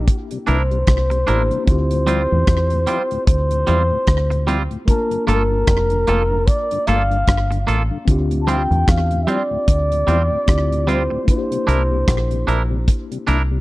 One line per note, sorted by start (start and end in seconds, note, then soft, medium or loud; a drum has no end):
0.00 1.22 A#3 medium
0.00 1.23 D4 medium
0.00 1.24 E4 medium
0.00 1.25 G4 medium
0.08 kick loud
0.08 closed hi-hat medium
0.31 0.38 C3 medium
0.31 0.38 G3 medium
0.31 closed hi-hat medium
0.47 0.85 C2 medium
0.47 0.57 A#3 medium
0.47 0.61 D4 medium
0.47 0.58 D4 medium
0.47 0.62 E4 medium
0.47 0.58 E4 medium
0.47 0.62 A#4 medium
0.47 1.64 C5 medium
0.47 closed hi-hat medium
0.71 0.78 C3 medium
0.71 0.78 G3 medium
0.71 closed hi-hat soft
0.87 1.24 C2 medium
0.87 kick loud
0.87 cross-stick medium
0.87 closed hi-hat medium
1.10 1.18 C3 medium
1.10 1.18 G3 medium
1.10 muted clean electric guitar stroke soft
1.10 closed hi-hat soft
1.26 1.49 A1 medium
1.26 1.67 A#3 medium
1.26 1.38 A#3 medium
1.26 1.41 D4 medium
1.26 1.67 D4 soft
1.26 1.38 D4 medium
1.26 1.65 E4 soft
1.26 1.42 E4 medium
1.26 1.38 E4 medium
1.26 1.68 G4 medium
1.26 1.42 A#4 medium
1.26 closed hi-hat medium
1.51 1.58 C3 medium
1.51 1.58 G3 medium
1.51 closed hi-hat soft
1.65 2.27 D2 loud
1.65 4.82 C4 medium
1.65 4.83 E4 medium
1.65 3.23 C5 loud
1.65 kick loud
1.65 closed hi-hat medium
1.69 4.84 F4 medium
1.69 4.85 G4 medium
1.91 1.98 D2 soft
1.91 1.98 A2 medium
1.91 closed hi-hat medium
2.07 2.18 F3 medium
2.07 2.21 G3 medium
2.07 2.18 G3 medium
2.07 2.21 C4 medium
2.07 2.18 C4 medium
2.07 2.18 E4 medium
2.07 2.22 F4 medium
2.07 closed hi-hat medium
2.32 2.39 D2 medium
2.32 2.47 E2 medium
2.32 2.39 A2 medium
2.47 2.84 E2 medium
2.47 kick loud
2.47 cross-stick loud
2.47 closed hi-hat medium
2.70 2.79 D2 medium
2.70 2.79 A2 medium
2.70 closed hi-hat soft
2.87 2.98 F3 medium
2.87 3.01 G3 medium
2.87 2.98 G3 medium
2.87 3.02 C4 medium
2.87 2.98 C4 medium
2.87 2.98 E4 medium
2.87 3.02 F4 medium
2.87 closed hi-hat medium
3.11 3.18 D2 medium
3.11 3.18 A2 medium
3.11 closed hi-hat soft
3.26 3.64 D2 medium
3.26 4.58 C5 medium
3.26 kick loud
3.26 closed hi-hat loud
3.51 3.58 D2 medium
3.51 3.58 A2 medium
3.51 closed hi-hat medium
3.67 3.89 E2 medium
3.67 3.78 F3 medium
3.67 3.81 G3 medium
3.67 3.78 G3 medium
3.67 3.82 C4 medium
3.67 3.78 C4 medium
3.67 3.78 E4 medium
3.67 3.82 F4 medium
3.67 closed hi-hat medium
3.91 3.98 D2 medium
3.91 3.98 A2 medium
4.07 4.67 D2 medium
4.07 kick loud
4.07 cross-stick loud
4.07 closed hi-hat medium
4.30 4.38 D2 medium
4.30 4.38 A2 medium
4.30 muted clean electric guitar stroke medium
4.30 closed hi-hat soft
4.47 4.57 F3 medium
4.47 4.61 G3 medium
4.47 4.58 G3 medium
4.47 4.58 C4 medium
4.47 4.62 C4 medium
4.47 4.58 E4 medium
4.47 4.62 F4 medium
4.47 closed hi-hat medium
4.70 4.78 D2 medium
4.70 4.78 A2 medium
4.70 closed hi-hat soft
4.85 4.94 A3 medium
4.85 8.03 D4 medium
4.85 8.04 F4 medium
4.85 5.25 A#4 loud
4.85 kick medium
4.85 closed hi-hat medium
4.91 8.06 A#3 medium
4.91 8.05 A5 medium
5.10 5.18 G2 medium
5.10 5.18 D3 medium
5.10 closed hi-hat medium
5.27 5.65 G1 medium
5.27 5.37 A3 medium
5.27 5.41 A#3 medium
5.27 5.38 A#3 medium
5.27 5.38 F4 medium
5.27 5.42 F4 medium
5.27 5.42 A4 medium
5.27 6.49 A#4 loud
5.27 closed hi-hat medium
5.51 5.58 G2 medium
5.51 5.58 D3 soft
5.67 6.04 F1 medium
5.67 kick loud
5.67 cross-stick loud
5.67 closed hi-hat medium
5.90 5.98 G2 soft
5.90 5.98 D3 medium
5.90 closed hi-hat soft
6.07 6.45 F1 medium
6.07 6.17 A3 medium
6.07 6.21 A#3 medium
6.07 6.18 A#3 medium
6.07 6.18 F4 medium
6.07 6.22 F4 medium
6.07 6.22 A4 medium
6.07 closed hi-hat medium
6.31 6.38 G2 medium
6.31 6.38 D3 medium
6.47 6.89 D5 loud
6.47 kick loud
6.47 closed hi-hat medium
6.71 6.78 G2 medium
6.71 6.79 D3 medium
6.71 closed hi-hat medium
6.87 7.25 G1 medium
6.87 6.98 A3 medium
6.87 7.01 A#3 medium
6.87 6.98 A#3 medium
6.87 7.02 F4 medium
6.87 6.98 F4 medium
6.87 7.02 A4 medium
6.87 7.67 F5 loud
6.87 closed hi-hat medium
7.10 7.18 G2 medium
7.10 7.18 D3 medium
7.10 closed hi-hat soft
7.27 7.64 G1 loud
7.27 kick loud
7.27 cross-stick loud
7.27 closed hi-hat medium
7.51 7.58 G2 medium
7.51 7.58 D3 medium
7.51 muted clean electric guitar stroke soft
7.51 closed hi-hat soft
7.67 7.89 A1 medium
7.67 7.78 A3 medium
7.67 7.81 A#3 medium
7.67 7.78 A#3 medium
7.67 7.82 F4 medium
7.67 7.78 F4 medium
7.67 7.82 A4 medium
7.67 closed hi-hat medium
7.91 7.98 G2 medium
7.91 7.98 D3 medium
8.05 8.67 D2 loud
8.05 10.42 C4 medium
8.05 10.44 D4 medium
8.05 10.44 F4 medium
8.05 kick loud
8.05 closed hi-hat medium
8.11 10.45 G4 medium
8.31 8.38 D2 medium
8.31 8.38 A2 medium
8.31 closed hi-hat medium
8.42 8.51 A5 medium
8.47 8.57 F3 medium
8.47 8.57 G3 medium
8.47 8.61 G3 medium
8.47 8.57 C4 medium
8.47 8.62 C4 medium
8.47 8.58 E4 medium
8.47 8.62 F4 medium
8.47 8.91 G5 loud
8.47 closed hi-hat medium
8.71 8.78 D2 medium
8.71 8.86 E2 medium
8.71 8.78 A2 medium
8.71 closed hi-hat soft
8.88 9.25 E2 loud
8.88 9.22 F5 medium
8.88 kick loud
8.88 cross-stick loud
8.88 closed hi-hat medium
9.11 9.18 D2 medium
9.11 9.18 A2 soft
9.11 closed hi-hat soft
9.23 9.31 E5 medium
9.27 9.37 F3 medium
9.27 9.41 G3 medium
9.27 9.38 G3 medium
9.27 9.37 C4 medium
9.27 9.42 C4 medium
9.27 9.38 E4 medium
9.27 9.42 F4 medium
9.27 10.90 D5 loud
9.27 closed hi-hat medium
9.51 9.58 D2 medium
9.51 9.58 A2 medium
9.68 10.05 D2 medium
9.68 kick loud
9.68 closed hi-hat loud
9.91 9.98 D2 medium
9.91 9.98 A2 soft
9.91 closed hi-hat medium
10.07 10.29 E2 medium
10.07 10.18 F3 medium
10.07 10.21 G3 medium
10.07 10.18 G3 medium
10.07 10.22 C4 medium
10.07 10.18 C4 medium
10.07 10.18 E4 medium
10.07 10.22 F4 medium
10.07 closed hi-hat medium
10.30 10.38 D2 medium
10.30 10.38 A2 medium
10.47 11.07 D2 medium
10.47 11.27 C4 medium
10.47 11.28 E4 medium
10.47 11.28 F4 medium
10.47 11.29 G4 medium
10.47 kick loud
10.47 cross-stick loud
10.47 closed hi-hat medium
10.71 10.78 D2 medium
10.71 10.78 A2 medium
10.71 closed hi-hat soft
10.87 10.97 F3 medium
10.87 11.01 G3 medium
10.87 10.98 G3 medium
10.87 10.98 C4 medium
10.87 11.02 C4 medium
10.87 10.98 E4 medium
10.87 11.02 F4 medium
10.87 11.28 C5 medium
10.87 closed hi-hat medium
11.10 11.18 D2 medium
11.10 11.18 A2 medium
11.10 muted clean electric guitar stroke soft
11.25 13.61 A#3 medium
11.25 13.61 D4 medium
11.25 13.61 E4 medium
11.25 kick loud
11.25 closed hi-hat medium
11.29 11.37 F4 medium
11.29 12.84 C5 medium
11.38 13.61 G4 medium
11.51 11.58 C3 medium
11.51 11.58 G3 medium
11.51 closed hi-hat medium
11.67 12.05 C2 medium
11.67 11.78 A#3 medium
11.67 11.81 D4 medium
11.67 11.78 D4 medium
11.67 11.81 E4 medium
11.67 11.78 E4 medium
11.67 11.82 A#4 medium
11.67 closed hi-hat medium
11.91 11.98 C3 medium
11.91 11.98 G3 medium
12.08 12.45 A#1 loud
12.08 kick loud
12.08 cross-stick loud
12.08 closed hi-hat medium
12.31 12.38 C3 medium
12.31 12.38 G3 medium
12.31 closed hi-hat soft
12.47 12.85 A#1 medium
12.47 12.58 A#3 medium
12.47 12.61 D4 medium
12.47 12.58 D4 medium
12.47 12.62 E4 medium
12.47 12.58 E4 medium
12.47 12.62 A#4 medium
12.47 closed hi-hat medium
12.71 12.78 C3 medium
12.71 12.78 G3 medium
12.88 kick loud
12.88 closed hi-hat loud
13.11 13.18 C3 medium
13.11 13.18 G3 medium
13.11 closed hi-hat medium
13.27 13.61 C2 medium
13.27 13.37 A#3 medium
13.27 13.41 D4 medium
13.27 13.38 D4 medium
13.27 13.38 E4 medium
13.27 13.42 E4 medium
13.27 13.42 A#4 medium
13.27 closed hi-hat medium
13.51 13.58 C3 medium
13.51 13.58 G3 medium